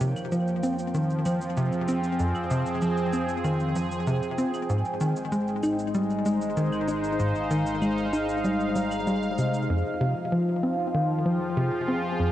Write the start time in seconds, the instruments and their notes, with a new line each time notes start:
Already playing: synth drone F2, analog synth pad F3 A#3 G5
0.01 analog synth bass C3, shaker
0.16 claves, shaker
0.32 analog synth bass F3, shaker
0.48 shaker
0.57 analog synth pad C4
0.63 analog synth bass C4, shaker
0.79 shaker
0.94 analog synth bass D#3, shaker
1.10 shaker
1.25 analog synth bass F3, claves, shaker
1.41 analog synth pad G#4, shaker
1.57 analog synth bass C3, shaker
1.72 shaker
1.88 analog synth bass C4, shaker
2.04 shaker
2.19 analog synth bass F2, shaker
2.35 claves, shaker
2.50 analog synth bass C3, shaker
2.66 shaker
2.82 analog synth bass F3, shaker
2.97 shaker
3.13 analog synth bass C4, shaker
3.29 shaker
3.44 analog synth bass D#3, claves, shaker
3.60 shaker
3.76 analog synth bass F3, shaker
3.91 shaker
4.07 analog synth bass C3, shaker
4.23 shaker
4.38 analog synth bass C4, shaker
4.54 claves, shaker
4.69 synth drone G#1, analog synth bass G#2, analog synth pad G#3, shaker
4.85 shaker
5.01 analog synth bass D#3, shaker
5.16 shaker
5.32 analog synth bass G#3, shaker
5.45 analog synth pad D#4, shaker
5.63 analog synth bass D#4, claves, shaker
5.75 analog synth pad C5, shaker
5.94 analog synth bass G3, shaker
6.10 shaker
6.26 analog synth bass G#3, shaker
6.41 shaker
6.57 analog synth bass D#3, shaker
6.73 claves, shaker
6.88 analog synth bass D#4, shaker
6.95 analog synth pad F5
7.04 shaker
7.20 analog synth bass G#2, shaker
7.35 shaker
7.51 analog synth bass D#3, shaker
7.66 shaker
7.82 analog synth bass G#3, claves, shaker
7.98 shaker
8.13 analog synth bass D#4, shaker
8.29 shaker
8.44 analog synth bass G3, shaker
8.60 shaker
8.76 analog synth bass G3, shaker
8.91 claves, shaker
9.07 analog synth bass G3, shaker
9.23 shaker
9.38 analog synth bass C3, shaker
9.54 shaker
9.69 synth drone F2, analog synth bass F2, analog synth pad F3
10.01 analog synth bass C3
10.05 analog synth pad F4
10.32 analog synth bass F3
10.60 analog synth bass C4, analog synth pad G5
10.94 analog synth bass D#3
11.23 analog synth bass F3, analog synth pad G#4
11.57 analog synth bass C3
11.88 analog synth bass C4
12.20 analog synth bass F2